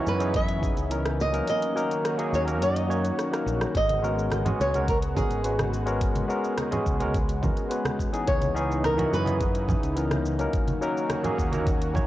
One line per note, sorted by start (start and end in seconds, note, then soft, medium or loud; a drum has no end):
0.00 1.46 C#3 medium
0.00 0.17 E3 medium
0.00 1.46 E3 medium
0.00 0.17 B3 medium
0.00 1.44 B3 medium
0.00 0.17 C#4 medium
0.00 1.46 C#4 medium
0.00 0.18 D#4 medium
0.00 0.18 F#4 loud
0.07 0.70 F#2 medium
0.07 0.37 B4 medium
0.07 cabasa medium
0.19 0.36 E3 medium
0.19 0.36 B3 medium
0.19 0.37 C#4 medium
0.19 0.37 D#4 medium
0.19 0.37 G#4 medium
0.19 closed hi-hat soft
0.19 cabasa soft
0.34 0.91 E5 loud
0.34 kick loud
0.34 closed hi-hat medium
0.34 cabasa soft
0.49 closed hi-hat soft
0.49 cabasa soft
0.61 0.86 E3 medium
0.61 0.86 B3 medium
0.61 0.87 C#4 medium
0.61 0.87 D#4 medium
0.61 0.87 G#4 medium
0.61 kick loud
0.61 cabasa medium
0.77 1.40 C#2 medium
0.77 closed hi-hat soft
0.77 cabasa soft
0.89 1.30 E3 medium
0.89 1.30 B3 medium
0.89 1.30 C#4 medium
0.89 1.31 D#4 medium
0.89 1.31 A#4 medium
0.89 1.16 D#5 loud
0.89 closed hi-hat medium
0.89 cabasa soft
1.05 cross-stick medium
1.05 closed hi-hat soft
1.05 cabasa soft
1.20 1.47 D#5 loud
1.20 cabasa medium
1.32 1.72 F#3 medium
1.32 1.72 A#3 medium
1.32 1.73 C#4 medium
1.32 1.73 D#4 medium
1.32 1.73 A#4 loud
1.32 closed hi-hat soft
1.32 cabasa soft
1.47 3.72 D#3 medium
1.47 3.72 A#3 medium
1.47 3.72 C#4 medium
1.47 8.23 F#4 medium
1.47 2.30 D#5 loud
1.47 closed hi-hat medium
1.47 cabasa soft
1.62 closed hi-hat soft
1.62 cabasa soft
1.75 2.15 F#3 medium
1.75 2.15 A#3 medium
1.75 2.15 C#4 medium
1.75 2.16 D#4 medium
1.75 2.16 A#4 loud
1.75 cabasa medium
1.91 closed hi-hat soft
1.91 cabasa soft
2.05 cross-stick medium
2.05 closed hi-hat medium
2.05 cabasa soft
2.18 2.43 F#3 medium
2.18 2.43 A#3 medium
2.18 2.44 C#4 medium
2.18 2.44 D#4 medium
2.18 2.44 G#4 loud
2.18 closed hi-hat soft
2.18 cabasa soft
2.33 2.61 D#2 medium
2.33 2.42 C#5 medium
2.33 cabasa medium
2.45 2.63 F#3 medium
2.45 2.63 A#3 medium
2.45 2.63 C#4 medium
2.45 2.63 D#4 medium
2.45 2.64 A#4 loud
2.45 closed hi-hat soft
2.45 cabasa soft
2.61 3.10 F#2 medium
2.61 3.43 D#5 medium
2.61 closed hi-hat medium
2.61 cabasa soft
2.76 closed hi-hat soft
2.76 cabasa soft
2.88 3.28 F#3 medium
2.88 3.28 A#3 medium
2.88 3.29 C#4 medium
2.88 3.29 D#4 medium
2.88 3.29 C#5 loud
2.88 cabasa medium
3.05 closed hi-hat soft
3.05 cabasa soft
3.19 cross-stick medium
3.19 closed hi-hat medium
3.19 cabasa soft
3.31 3.72 F#3 medium
3.31 3.73 A#3 medium
3.31 3.73 C#4 medium
3.31 3.73 D#4 medium
3.31 3.73 A#4 medium
3.31 cross-stick medium
3.31 closed hi-hat medium
3.31 cabasa soft
3.46 3.65 A#1 medium
3.46 cabasa medium
3.61 cross-stick medium
3.61 closed hi-hat soft
3.61 cabasa soft
3.75 4.52 G#1 loud
3.75 8.24 G#3 medium
3.75 10.50 B3 medium
3.75 4.61 D#5 loud
3.75 kick loud
3.75 closed hi-hat medium
3.75 cabasa soft
3.89 closed hi-hat soft
3.89 high conga medium
3.89 cabasa soft
4.02 4.42 G#3 medium
4.02 4.42 B3 medium
4.02 4.42 C#4 medium
4.02 4.43 F#4 medium
4.02 4.43 A#4 loud
4.02 cabasa medium
4.19 cabasa soft
4.30 cross-stick medium
4.30 closed hi-hat medium
4.30 high conga medium
4.30 cabasa soft
4.45 4.70 G#3 medium
4.45 4.70 B3 medium
4.45 4.71 C#4 medium
4.45 4.71 F#4 medium
4.45 4.71 G#4 loud
4.45 closed hi-hat soft
4.45 low conga loud
4.45 cabasa soft
4.60 5.23 C#2 medium
4.60 4.89 C#5 medium
4.60 cabasa medium
4.73 4.90 G#3 medium
4.73 4.90 B3 medium
4.73 4.91 C#4 medium
4.73 4.91 F#4 medium
4.73 4.91 A#4 loud
4.73 closed hi-hat soft
4.73 high conga medium
4.73 cabasa soft
4.88 4.97 A#4 medium
4.88 kick loud
4.88 closed hi-hat medium
4.88 cabasa soft
5.02 closed hi-hat soft
5.02 cabasa soft
5.15 5.40 G#3 medium
5.15 5.40 B3 medium
5.15 5.40 C#4 medium
5.15 5.41 F#4 medium
5.15 5.69 G#4 medium
5.15 5.41 A#4 medium
5.15 kick loud
5.15 high conga medium
5.15 low conga medium
5.15 cabasa medium
5.31 6.22 G#1 medium
5.31 closed hi-hat soft
5.31 cabasa soft
5.43 5.83 G#3 medium
5.43 5.83 B3 medium
5.43 5.83 C#4 medium
5.43 5.84 F#4 medium
5.43 5.84 B4 medium
5.43 closed hi-hat medium
5.43 cabasa soft
5.59 cross-stick medium
5.59 closed hi-hat soft
5.59 high conga loud
5.59 cabasa soft
5.74 cabasa medium
5.85 6.25 G#3 medium
5.85 6.25 B3 medium
5.85 6.25 C#4 medium
5.85 6.26 F#4 medium
5.85 6.26 A#4 medium
5.85 closed hi-hat soft
5.85 cabasa soft
6.01 kick loud
6.01 closed hi-hat medium
6.01 cabasa soft
6.15 closed hi-hat soft
6.15 high conga loud
6.15 cabasa soft
6.28 6.68 G#3 medium
6.28 6.68 B3 medium
6.28 6.68 C#4 medium
6.28 6.69 F#4 medium
6.28 6.69 A#4 loud
6.28 cabasa medium
6.44 cabasa soft
6.58 cross-stick medium
6.58 closed hi-hat medium
6.58 high conga medium
6.58 cabasa soft
6.71 6.96 G#3 medium
6.71 6.96 B3 medium
6.71 6.97 C#4 medium
6.71 6.97 F#4 medium
6.71 6.97 G#4 loud
6.71 closed hi-hat soft
6.71 low conga medium
6.71 cabasa soft
6.86 7.49 C#2 medium
6.86 kick medium
6.86 cabasa medium
7.00 7.16 G#3 medium
7.00 7.17 B3 medium
7.00 7.17 C#4 medium
7.00 7.17 F#4 medium
7.00 7.17 A#4 loud
7.00 closed hi-hat soft
7.00 high conga medium
7.00 cabasa soft
7.14 kick loud
7.14 closed hi-hat medium
7.14 cabasa soft
7.29 closed hi-hat soft
7.29 cabasa soft
7.41 7.66 G#3 medium
7.41 7.66 B3 medium
7.41 7.67 C#4 medium
7.41 7.67 F#4 medium
7.41 7.67 A#4 medium
7.41 kick loud
7.41 high conga medium
7.41 low conga medium
7.41 cabasa medium
7.57 closed hi-hat soft
7.57 cabasa soft
7.69 8.09 G#3 medium
7.69 8.09 B3 medium
7.69 8.10 C#4 medium
7.69 8.10 F#4 medium
7.69 8.10 B4 medium
7.69 closed hi-hat medium
7.69 cabasa soft
7.85 cross-stick medium
7.85 closed hi-hat soft
7.85 high conga medium
7.85 cabasa soft
7.99 kick medium
7.99 cabasa medium
8.12 8.52 E3 medium
8.12 8.52 B3 medium
8.12 8.52 C#4 medium
8.12 8.52 D#4 medium
8.12 8.53 G#4 loud
8.12 closed hi-hat soft
8.12 cabasa soft
8.27 9.05 C#2 loud
8.27 10.52 C#3 medium
8.27 10.52 E3 medium
8.27 10.52 D#4 medium
8.27 8.80 C#5 loud
8.27 kick loud
8.27 closed hi-hat medium
8.27 cabasa soft
8.42 closed hi-hat soft
8.42 high conga loud
8.42 cabasa soft
8.54 8.94 E3 medium
8.54 8.94 B3 medium
8.54 8.95 C#4 medium
8.54 8.95 D#4 medium
8.54 8.95 G#4 loud
8.54 cabasa medium
8.72 cabasa soft
8.84 9.10 A#4 loud
8.84 cross-stick medium
8.84 closed hi-hat medium
8.84 high conga medium
8.84 cabasa soft
8.96 9.22 E3 medium
8.96 9.23 B3 medium
8.96 9.23 C#4 medium
8.96 9.23 D#4 medium
8.96 9.23 F#4 loud
8.96 closed hi-hat soft
8.96 low conga medium
8.96 cabasa soft
9.12 9.75 F#2 medium
9.12 10.22 B4 medium
9.12 cabasa medium
9.25 9.42 E3 medium
9.25 9.42 B3 medium
9.25 9.43 C#4 medium
9.25 9.43 D#4 medium
9.25 9.43 G#4 loud
9.25 closed hi-hat soft
9.25 high conga medium
9.25 cabasa soft
9.40 kick loud
9.40 closed hi-hat medium
9.40 cabasa soft
9.55 closed hi-hat soft
9.55 cabasa soft
9.67 9.92 E3 medium
9.67 9.92 B3 medium
9.67 9.93 C#4 medium
9.67 9.93 D#4 medium
9.67 9.93 G#4 medium
9.67 kick loud
9.67 high conga medium
9.67 low conga loud
9.67 cabasa medium
9.83 10.46 C#2 medium
9.83 closed hi-hat soft
9.83 cabasa soft
9.95 10.36 E3 medium
9.95 10.36 B3 medium
9.95 10.36 C#4 medium
9.95 10.37 D#4 medium
9.95 10.37 A#4 medium
9.95 closed hi-hat medium
9.95 cabasa soft
10.11 cross-stick medium
10.11 closed hi-hat soft
10.11 high conga medium
10.11 cabasa soft
10.26 cabasa medium
10.39 10.78 F#3 medium
10.39 10.78 A#3 medium
10.39 10.79 C#4 medium
10.39 10.79 D#4 medium
10.39 10.79 A#4 medium
10.39 closed hi-hat soft
10.39 cabasa soft
10.53 12.07 D#3 medium
10.53 12.07 A#3 medium
10.53 12.07 C#4 medium
10.53 12.07 F#4 medium
10.53 kick loud
10.53 closed hi-hat medium
10.53 cabasa soft
10.68 closed hi-hat soft
10.68 high conga loud
10.68 cabasa soft
10.81 11.21 F#3 loud
10.81 11.21 A#3 medium
10.81 11.21 C#4 medium
10.81 11.22 D#4 medium
10.81 11.22 A#4 loud
10.81 cabasa medium
10.97 cabasa soft
11.10 cross-stick medium
11.10 closed hi-hat medium
11.10 high conga medium
11.10 cabasa soft
11.23 11.49 F#3 medium
11.23 11.49 A#3 medium
11.23 11.50 C#4 medium
11.23 11.50 D#4 medium
11.23 11.50 G#4 loud
11.23 closed hi-hat soft
11.23 low conga medium
11.23 cabasa soft
11.38 12.02 D#2 medium
11.38 kick medium
11.38 cabasa medium
11.52 11.69 F#3 medium
11.52 11.69 A#3 medium
11.52 11.69 C#4 medium
11.52 11.69 D#4 medium
11.52 11.70 A#4 medium
11.52 closed hi-hat soft
11.52 high conga medium
11.52 cabasa soft
11.67 kick loud
11.67 closed hi-hat medium
11.67 cabasa soft
11.82 closed hi-hat soft
11.82 cabasa soft
11.94 12.07 F#3 medium
11.94 12.07 A#3 medium
11.94 12.07 C#4 medium
11.94 12.07 D#4 medium
11.94 12.07 C#5 loud
11.94 kick loud
11.94 high conga medium
11.94 low conga medium
11.94 cabasa medium